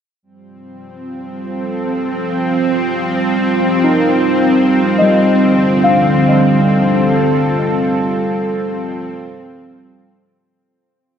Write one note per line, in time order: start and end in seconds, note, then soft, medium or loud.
0.23 10.60 F3 medium
0.23 10.51 G3 medium
0.23 10.60 C4 medium
0.39 10.51 C4 medium
0.85 10.51 F4 medium
1.39 2.80 A4 medium
3.46 5.37 A#4 medium
3.84 5.54 D#4 medium
4.98 9.06 G3 medium
4.98 5.54 D#5 soft
5.36 7.94 D3 medium
5.84 9.88 F5 medium
6.53 10.51 A4 medium